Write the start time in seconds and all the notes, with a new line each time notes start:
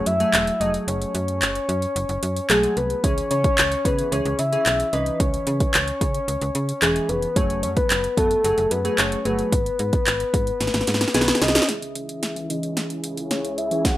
Already playing: F#3 A3 G#4
0.06 F#2 E5, closed hi-hat
0.20 F#3 A3 G#4, closed hi-hat
0.33 E1, clap, closed hi-hat
0.47 closed hi-hat
0.60 F1 F#3 A3 G#4 D#5, closed hi-hat
0.74 closed hi-hat
0.87 F#1 C#5, closed hi-hat
1.02 closed hi-hat
1.15 F#2, closed hi-hat
1.28 closed hi-hat
1.42 F#1, clap, closed hi-hat
1.55 closed hi-hat
1.69 F#2, closed hi-hat
1.82 closed hi-hat
1.96 F#1, closed hi-hat
2.09 F#1, closed hi-hat
2.23 F#2, closed hi-hat
2.37 closed hi-hat
2.50 B1 F#3 A3 G#4, clap, closed hi-hat
2.63 closed hi-hat
2.77 C2 B4, closed hi-hat
2.90 closed hi-hat
3.04 C#2 E3 C#4 G#4 C#5, kick, closed hi-hat
3.18 closed hi-hat
3.31 C#3 C#5, closed hi-hat
3.44 kick, closed hi-hat
3.58 C#2, clap, closed hi-hat
3.72 closed hi-hat
3.85 C#3 E3 C#4 G#4 B4, kick, closed hi-hat
3.99 closed hi-hat
4.12 C#2 E3 C#4 G#4 C#5, closed hi-hat
4.25 C#2, closed hi-hat
4.39 C#3 E5, closed hi-hat
4.52 E3 C#4 G#4, closed hi-hat
4.66 B1, clap, closed hi-hat
4.80 closed hi-hat
4.93 C2 E3 C#4 B4 D#5, closed hi-hat
5.06 closed hi-hat
5.20 C#2 C#5, kick, closed hi-hat
5.34 closed hi-hat
5.47 C#3, closed hi-hat
5.60 kick, closed hi-hat
5.74 C#2, clap, closed hi-hat
5.88 closed hi-hat
6.01 C#3, kick, closed hi-hat
6.14 closed hi-hat
6.28 C#2, closed hi-hat
6.41 C#2, closed hi-hat
6.55 C#3, closed hi-hat
6.69 closed hi-hat
6.82 E1 E3 C#4 G#4, clap, closed hi-hat
6.96 closed hi-hat
7.09 F1 B4, closed hi-hat
7.22 closed hi-hat
7.36 F#1 F#3 A3 G#4 C#5, kick, closed hi-hat
7.50 closed hi-hat
7.63 F#2 C#5, closed hi-hat
7.76 B4, kick, closed hi-hat
7.90 F#1, clap, closed hi-hat
8.04 closed hi-hat
8.17 F#2 F#3 A3 B3 A4, kick, closed hi-hat
8.31 closed hi-hat
8.44 F#1 F#3 A3 G#4, closed hi-hat
8.58 F#1, closed hi-hat
8.71 F#2 B4, closed hi-hat
8.85 F#3 A3 G#4, closed hi-hat
8.98 F#1 C#5, clap, closed hi-hat
9.12 closed hi-hat
9.25 G1 F#3 A3 G#4 B4, closed hi-hat
9.39 closed hi-hat
9.52 G#1, kick, closed hi-hat
9.66 closed hi-hat
9.79 G#2, closed hi-hat
9.93 kick, closed hi-hat
10.06 G#1, clap, closed hi-hat
10.20 closed hi-hat
10.34 G#2, kick, closed hi-hat
10.47 closed hi-hat
10.61 G#1, snare, closed hi-hat
10.67 snare
10.74 G#1, snare, closed hi-hat
10.81 snare
10.87 G#2, snare, closed hi-hat
10.94 snare
11.01 snare, closed hi-hat
11.08 snare
11.14 B1 D#3 B3 G#4 B4, snare, closed hi-hat
11.21 snare
11.28 snare, closed hi-hat
11.35 snare
11.42 C2 D#5, snare, closed hi-hat
11.48 snare
11.55 snare, closed hi-hat
11.62 snare
11.68 C#2 C#3 E3 C#4 E4 G#4 E5, snare, closed hi-hat
11.82 C#3, closed hi-hat
11.95 C#3 E5, closed hi-hat
12.09 closed hi-hat
12.23 snare, closed hi-hat
12.36 E3, closed hi-hat
12.49 C#3 E3 C#4 E4 D#5, closed hi-hat
12.63 closed hi-hat
12.77 snare, closed hi-hat
12.90 closed hi-hat
13.04 closed hi-hat
13.17 C#3, closed hi-hat
13.31 C#3 C#5, snare, closed hi-hat
13.45 closed hi-hat
13.58 C#5 E5, closed hi-hat
13.71 E3 C#4 G#4, closed hi-hat
13.85 C#3 F#5, kick, snare, closed hi-hat